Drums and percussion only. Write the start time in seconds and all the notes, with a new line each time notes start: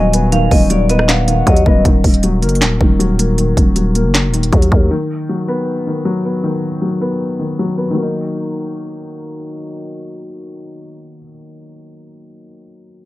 0.13 closed hi-hat
0.32 closed hi-hat
0.51 kick, open hi-hat
0.70 closed hi-hat
0.89 closed hi-hat
0.99 cross-stick
1.09 snare, clap, closed hi-hat
1.28 closed hi-hat
1.47 kick, closed hi-hat
1.56 closed hi-hat
1.66 kick
1.85 kick, closed hi-hat
2.04 kick, closed hi-hat, open hi-hat
2.14 closed hi-hat
2.23 closed hi-hat
2.42 closed hi-hat
2.49 closed hi-hat
2.55 closed hi-hat
2.62 snare, clap, closed hi-hat
2.81 kick
3.00 closed hi-hat
3.19 closed hi-hat
3.38 closed hi-hat
3.57 kick, closed hi-hat
3.76 closed hi-hat
3.95 closed hi-hat
4.14 snare, clap, closed hi-hat
4.34 closed hi-hat
4.43 closed hi-hat
4.53 kick, closed hi-hat
4.62 closed hi-hat
4.72 kick